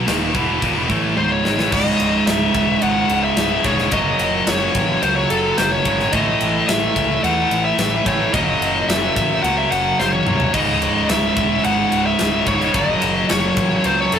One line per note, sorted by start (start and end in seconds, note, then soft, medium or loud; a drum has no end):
0.06 0.33 D#1 loud
0.06 0.34 D#2 medium
0.06 0.34 A#2 loud
0.06 0.34 D#3 loud
0.06 snare loud
0.06 crash medium
0.34 0.60 E1 medium
0.34 0.61 E2 medium
0.34 0.61 B2 medium
0.34 0.62 E3 loud
0.34 kick medium
0.34 crash medium
0.61 0.75 D#1 medium
0.61 0.75 D#2 medium
0.61 0.75 A#2 loud
0.61 kick medium
0.61 crash medium
0.76 0.89 E1 medium
0.76 0.89 E2 loud
0.76 0.89 B2 loud
0.90 1.15 A1 medium
0.90 1.16 A2 medium
0.90 1.17 E3 loud
0.90 1.17 A3 loud
0.90 kick medium
0.90 crash medium
1.17 1.43 C#1 medium
1.17 1.43 C#2 loud
1.17 1.43 G#2 loud
1.17 1.44 C#3 loud
1.17 1.31 C5 medium
1.17 high tom medium
1.31 1.72 C#5 medium
1.44 1.58 G#1 loud
1.44 1.57 G#2 medium
1.44 1.58 D#3 loud
1.44 snare medium
1.58 1.71 A1 medium
1.58 1.70 A2 medium
1.58 1.72 E3 loud
1.58 snare medium
1.71 1.93 C#1 loud
1.71 2.80 C#2 medium
1.71 2.81 G#2 medium
1.71 2.82 C#3 loud
1.71 2.24 D#5 loud
1.71 kick loud
1.71 crash loud
2.00 2.20 C#1 loud
2.00 ride medium
2.27 2.48 C#1 medium
2.27 2.82 E5 loud
2.27 snare loud
2.27 ride loud
2.54 2.75 E1 medium
2.54 kick medium
2.54 ride medium
2.81 3.03 G#1 medium
2.81 3.90 C#2 medium
2.81 3.91 G#2 medium
2.81 3.92 C#3 medium
2.81 3.23 F#5 loud
2.81 ride loud
3.09 3.30 C#1 medium
3.09 ride medium
3.24 3.66 E5 loud
3.36 3.57 C#1 loud
3.36 snare loud
3.36 ride loud
3.64 3.92 E1 loud
3.64 3.91 C#2 medium
3.64 3.91 G#2 medium
3.64 3.91 C#3 medium
3.64 3.93 C#5 loud
3.64 kick medium
3.64 ride medium
3.78 snare soft
3.91 4.13 F#1 medium
3.91 5.00 F#2 medium
3.91 5.01 C#3 medium
3.91 5.02 F#3 medium
3.91 4.48 D#5 loud
3.91 kick loud
3.91 ride loud
4.19 4.41 F#1 loud
4.19 ride medium
4.47 4.68 F#1 loud
4.47 5.02 C#5 loud
4.47 snare loud
4.47 ride loud
4.75 4.96 A1 loud
4.75 kick medium
4.75 ride medium
5.02 5.23 C#2 medium
5.02 6.11 F#2 medium
5.02 6.12 C#3 medium
5.02 6.12 F#3 medium
5.02 5.15 C5 loud
5.02 ride loud
5.16 5.29 C#5 medium
5.30 5.51 F#1 medium
5.30 5.59 A4 medium
5.30 ride medium
5.57 5.79 F#1 loud
5.57 5.72 C5 medium
5.57 snare loud
5.57 ride loud
5.72 6.13 C#5 loud
5.85 6.06 G#1 medium
5.85 6.13 F#2 medium
5.85 6.12 C#3 medium
5.85 6.12 F#3 medium
5.85 kick medium
5.85 ride medium
6.00 snare soft
6.12 6.34 A1 loud
6.12 7.21 A2 medium
6.12 7.22 E3 loud
6.12 7.25 A3 loud
6.12 6.64 D#5 loud
6.12 kick loud
6.12 ride loud
6.41 6.62 A1 loud
6.41 ride medium
6.69 6.89 A1 medium
6.69 7.20 E5 loud
6.69 snare loud
6.69 ride loud
6.96 7.17 C#2 loud
6.96 kick medium
6.96 ride medium
7.23 7.44 E2 loud
7.23 8.32 A2 medium
7.23 8.33 E3 medium
7.23 8.33 A3 medium
7.23 7.62 F#5 loud
7.23 ride loud
7.51 7.71 A1 medium
7.51 ride medium
7.65 8.08 E5 loud
7.78 7.99 A1 loud
7.78 snare loud
7.78 ride loud
8.05 8.27 A1 medium
8.05 8.33 A2 medium
8.05 8.32 E3 medium
8.05 8.32 A3 medium
8.05 8.32 C#5 medium
8.05 kick medium
8.05 ride medium
8.33 8.54 F#1 loud
8.33 9.42 F#2 medium
8.33 9.43 C#3 medium
8.33 9.44 F#3 loud
8.33 8.90 D#5 loud
8.33 kick loud
8.33 ride loud
8.61 8.82 F#1 medium
8.61 ride medium
8.88 9.09 F#1 medium
8.88 9.43 E5 loud
8.88 snare loud
8.88 ride loud
9.16 9.37 A1 medium
9.16 kick medium
9.16 ride medium
9.43 9.64 C#2 loud
9.43 10.53 F#2 medium
9.43 10.53 C#3 medium
9.43 10.54 F#3 medium
9.43 9.57 F#5 loud
9.43 ride loud
9.58 9.71 E5 medium
9.72 9.92 F#1 medium
9.72 10.00 F#5 medium
9.72 ride medium
9.99 10.20 F#1 medium
9.99 10.12 C5 medium
9.99 snare medium
10.13 10.51 C#5 medium
10.13 high tom medium
10.26 10.48 C2 medium
10.26 10.53 F#2 medium
10.26 10.53 C#3 medium
10.26 10.52 F#3 medium
10.26 mid tom loud
10.40 floor tom medium
10.53 10.75 C#1 loud
10.53 11.62 C#2 medium
10.53 11.63 G#2 loud
10.53 11.64 C#3 loud
10.53 11.06 D#5 loud
10.53 kick loud
10.53 crash loud
10.81 11.02 C#1 loud
10.81 ride medium
11.09 11.30 C#1 medium
11.09 11.64 E5 loud
11.09 snare loud
11.09 ride loud
11.37 11.57 E1 loud
11.37 kick medium
11.37 ride medium
11.64 11.85 G#1 medium
11.64 12.73 C#2 medium
11.64 12.74 G#2 medium
11.64 12.74 C#3 medium
11.64 12.06 F#5 loud
11.64 ride loud
11.92 12.13 C#1 medium
11.92 ride medium
12.06 12.45 E5 medium
12.19 12.41 C#1 loud
12.19 snare loud
12.19 ride loud
12.46 12.68 C#1 medium
12.46 12.73 C#2 medium
12.46 12.74 G#2 medium
12.46 12.73 C#3 medium
12.46 12.75 C#5 medium
12.46 kick medium
12.46 ride medium
12.61 snare soft
12.74 12.95 F#1 medium
12.74 13.83 F#2 medium
12.74 13.84 C#3 medium
12.74 13.85 F#3 medium
12.74 13.30 D#5 medium
12.74 kick loud
12.74 ride loud
13.02 13.23 F#1 loud
13.02 ride medium
13.29 13.51 F#1 loud
13.29 13.86 C#5 medium
13.29 snare loud
13.29 ride loud
13.57 13.78 A1 medium
13.57 kick medium
13.57 ride medium
13.84 14.06 C#2 loud
13.84 14.19 F#2 medium
13.84 14.19 C#3 medium
13.84 14.19 F#3 medium
13.84 14.00 C5 medium
13.84 ride loud
14.00 14.14 C#5 medium
14.12 14.19 F#1 medium
14.12 14.19 A4 medium
14.12 ride medium